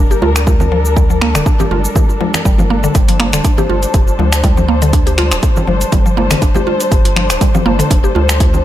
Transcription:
Already playing: analog synth bass F1, string section G3 D4 A4 A#4
0.11 synth pluck G4, shaker
0.22 analog synth bass D2, synth pluck F4, high conga
0.36 finger snap, shaker
0.47 kick, high conga, shaker
0.60 low conga, shaker
0.72 synth pluck F3
0.85 shaker
0.96 synth pluck G3, kick, shaker
1.10 synth pluck F3, shaker
1.21 synth pluck A#3, finger snap, high conga
1.35 analog synth bass D1, synth pluck D3, finger snap, shaker
1.46 synth pluck D4, kick, shaker
1.60 synth pluck G4, low conga, shaker
1.71 analog synth bass G1, synth pluck F4, high conga
1.85 shaker
1.95 kick, high conga, low conga, shaker
2.10 shaker
2.21 synth pluck F3, high conga
2.34 finger snap, low conga, shaker
2.45 analog synth bass G1, synth pluck G3, kick, shaker
2.58 synth pluck F3, high conga, low conga, shaker
2.70 synth pluck A#3, high conga
2.84 synth pluck D3, shaker
2.95 analog synth bass G1, synth pluck G3, string section C5, kick, closed hi-hat, shaker
3.08 synth pluck F3, closed hi-hat, shaker
3.20 synth pluck A#3, finger snap, closed hi-hat, high conga
3.33 analog synth bass D1, synth pluck D3, finger snap, closed hi-hat, shaker
3.44 synth pluck D4, kick, closed hi-hat, shaker
3.58 synth pluck G4, low conga, shaker
3.69 analog synth bass G1, synth pluck F4, high conga
3.83 closed hi-hat, shaker
3.94 analog synth bass F1, kick, closed hi-hat, shaker
4.08 shaker
4.19 analog synth bass D2, synth pluck F3, high conga
4.32 finger snap, closed hi-hat, shaker
4.44 synth pluck G3, kick, closed hi-hat, high conga, shaker
4.57 synth pluck F3, low conga, shaker
4.68 synth pluck A#3
4.82 synth pluck D3, closed hi-hat, shaker
4.93 synth pluck D4, kick, closed hi-hat, shaker
5.07 synth pluck G4, closed hi-hat, shaker
5.18 synth pluck F4, finger snap, closed hi-hat, high conga
5.32 analog synth bass D1, finger snap, closed hi-hat, shaker
5.43 kick, closed hi-hat, shaker
5.56 low conga, shaker
5.67 analog synth bass G1, synth pluck F3, high conga
5.81 closed hi-hat, shaker
5.92 analog synth bass G1, synth pluck G3, kick, closed hi-hat, high conga, low conga, shaker
6.06 synth pluck F3, shaker
6.17 synth pluck A#3, high conga
6.31 synth pluck D3, finger snap, closed hi-hat, low conga, shaker
6.42 analog synth bass G1, synth pluck D4, kick, closed hi-hat, shaker
6.54 synth pluck G4, high conga, low conga, shaker
6.67 synth pluck F4, high conga
6.80 closed hi-hat, shaker
6.92 analog synth bass G1, kick, closed hi-hat, shaker
7.05 closed hi-hat, shaker
7.16 synth pluck F3, finger snap, closed hi-hat, high conga
7.30 analog synth bass D1, finger snap, closed hi-hat, shaker
7.41 synth pluck G3, kick, closed hi-hat, shaker
7.55 synth pluck F3, low conga, shaker
7.66 analog synth bass G1, synth pluck A#3, high conga
7.79 synth pluck D3, closed hi-hat, shaker
7.90 analog synth bass F1, synth pluck D4, kick, closed hi-hat, shaker
8.04 synth pluck G4, shaker
8.15 analog synth bass D2, synth pluck F4, high conga
8.29 finger snap, closed hi-hat, shaker
8.40 kick, closed hi-hat, high conga, shaker
8.54 low conga, shaker

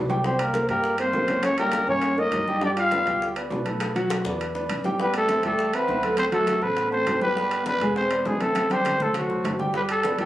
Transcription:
Already playing: upright bass C2
0.10 grand piano G3 G4 G5, high bongo, high conga, low timbale
0.24 grand piano G3 G4 G5, trombone C4, trumpet C5, high bongo, high conga
0.39 trombone A#3, trumpet A#4, high bongo, high conga, high timbale
0.54 grand piano A#3 A#4 C5, high bongo, high conga, high timbale
0.68 upright bass G2, grand piano G3 G4 G5, trombone A#3, trumpet A#4, high conga, high timbale
0.84 high bongo, high conga
0.98 grand piano A#3 A#4 C5, trombone C4, trumpet C5, high bongo, high conga, high timbale
1.13 upright bass C#2, grand piano A#3 A#4 C5, high bongo, low bongo, high conga, low timbale
1.28 grand piano A#3 A#4 C#5, high bongo, high conga, high timbale
1.43 trombone C#4, trumpet C#5, high bongo, high conga, high timbale
1.58 grand piano G3 G4 G5, trombone A#3, trumpet A#4, high bongo, high conga, high timbale
1.72 high bongo, high conga, high timbale
1.87 upright bass G2, grand piano A#3 A#4 C#5, trombone C#4, trumpet C#5
2.02 high bongo, high conga, high timbale
2.18 grand piano A#3 A#4 C#5, trombone D#4, trumpet D#5, high bongo, high conga
2.31 upright bass G2, high bongo, low bongo, high conga, high timbale, low timbale
2.47 grand piano G3 G4 G5, high bongo, high conga
2.61 grand piano G3 G4 G5, trombone D4, trumpet D5, high bongo, high conga
2.76 trombone F4, trumpet F5, high bongo, high conga, high timbale
2.91 grand piano B3 B4 D5, high bongo, high conga, high timbale
3.05 upright bass D2, grand piano G3 G4 G5, high conga, high timbale
3.22 high bongo, high conga
3.36 grand piano B3 B4 D5, high bongo, high conga, high timbale
3.50 upright bass B1, grand piano B3 B4 D5, high bongo, low bongo, high conga, low timbale
3.66 grand piano A3 A4 B4, high bongo, high conga, high timbale
3.80 high bongo, high conga, high timbale
3.95 grand piano F#3 F#4 F#5, high bongo, high conga, high timbale
4.10 high bongo, high conga, high timbale
4.25 upright bass E2, grand piano B3 B4 D5, high bongo
4.40 high conga, high timbale
4.55 grand piano B3 B4 D5, low bongo, high conga
4.69 upright bass A1, high conga, high timbale
4.84 grand piano G3 G4 G5, low bongo, high conga
4.99 grand piano G3 G4 G5, trombone B3, trumpet B4, high bongo, high conga
5.14 trombone A3, trumpet A4, high bongo, high conga, high timbale
5.29 grand piano C4 C5 E5, high bongo, high conga, high timbale
5.43 upright bass E2, grand piano G3 G4 G5, trombone A3, trumpet A4, high conga, high timbale
5.59 high bongo, high conga
5.73 trombone B3, grand piano C4 C5 E5, trumpet B4, high bongo, high conga, high timbale
5.88 upright bass D2, grand piano C4 C5 E5, high bongo, low bongo, high conga
6.03 grand piano A3 A4 C5, high bongo, high conga, high timbale
6.17 trombone C4, trumpet C5, high bongo, high conga, high timbale
6.32 grand piano F#3 F#4 F#5, trombone A3, trumpet A4, high bongo, high conga, high timbale
6.47 high bongo, high conga, high timbale
6.61 upright bass A1, grand piano A3 A4 C5, trombone B3, trumpet B4
6.77 high bongo, high conga, high timbale
6.91 grand piano A3 A4 C5, trombone C4, trumpet C5, high bongo, high conga
7.06 upright bass G1, high bongo, low bongo, high conga, high timbale, low timbale
7.21 grand piano G3 G4 G5, trombone B3, trumpet B4, high bongo, high conga
7.36 grand piano G3 G4 G5, high bongo, high conga
7.51 high bongo, high conga, high timbale
7.65 trombone B3, grand piano B3 B4 D5, trumpet B4, high bongo, high conga, high timbale
7.81 upright bass E1, grand piano G#3 G#4 G#5, high conga, high timbale
7.96 trombone C4, trumpet C5, high bongo, high conga
8.11 grand piano B3 B4 D5, high bongo, high conga, high timbale
8.25 upright bass A1, trombone G#3, grand piano B3 B4 D5, trumpet G#4, high bongo, low bongo, high conga, low timbale
8.39 trombone A3, grand piano C4 C5 E5, trumpet A4, high bongo, high conga, high timbale
8.55 high bongo, high conga, high timbale
8.69 grand piano G3 G4 G5, trombone C4, trumpet C5, high bongo, high conga, high timbale
8.85 high bongo, low conga, high timbale
8.99 upright bass D2, trombone A3, grand piano A3 A4 C5, trumpet A4, low conga
9.13 trombone F#3, trumpet F#4, high bongo, low conga, high timbale
9.30 grand piano A3 A4 C5, high bongo, low conga
9.44 upright bass G1, high bongo, low bongo, low conga, high timbale, low timbale
9.59 grand piano G3 G4 G5, high bongo, low conga
9.74 grand piano G3 G4 G5, trumpet B4, high bongo, high conga
9.89 trumpet A4, high bongo, high conga, high timbale
10.03 grand piano B3 B4 D5, high bongo, high conga, high timbale
10.18 upright bass D2, grand piano G3 G4 G5, trumpet A4, high conga, high timbale

